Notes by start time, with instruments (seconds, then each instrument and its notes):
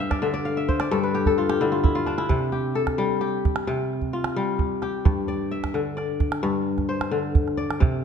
Already playing: kora G2 G4 F5 G5
0.00 kora E5
0.11 kora D5, calabash thump, calabash click
0.22 kora D3 E5
0.34 kora D5
0.45 kora F5
0.57 kora E5
0.68 kora C5, calabash thump
0.80 kora D5, calabash click
0.91 kora G2 A4
1.03 kora B4
1.15 kora G4
1.26 kora A4, calabash thump
1.38 kora F4
1.49 kora G4, calabash click
1.61 kora D3 E4
1.72 kora F4
1.84 kora E4, calabash thump
1.95 kora F4
2.06 kora D4, calabash click
2.18 kora E4, calabash click
2.29 kora C3, calabash thump
2.52 kora G4
2.75 kora A4, calabash click
2.87 calabash thump, calabash click
2.98 kora G3
3.21 kora G4
3.45 calabash thump
3.56 calabash click
3.67 kora C3
4.02 calabash thump
4.13 kora F4
4.24 calabash click
4.36 kora G3
4.59 calabash thump
4.82 kora G4, calabash click
5.05 kora G2, calabash thump
5.28 kora D5
5.51 kora E5
5.64 calabash thump, calabash click
5.74 kora D3, calabash click
5.97 kora D5, calabash click
6.20 calabash thump
6.32 calabash click
6.43 kora G2
6.78 calabash thump, calabash click
6.89 kora C5
7.01 calabash click
7.11 kora D3
7.35 calabash thump
7.48 calabash click
7.57 kora D5
7.71 calabash click
7.80 kora C3, calabash thump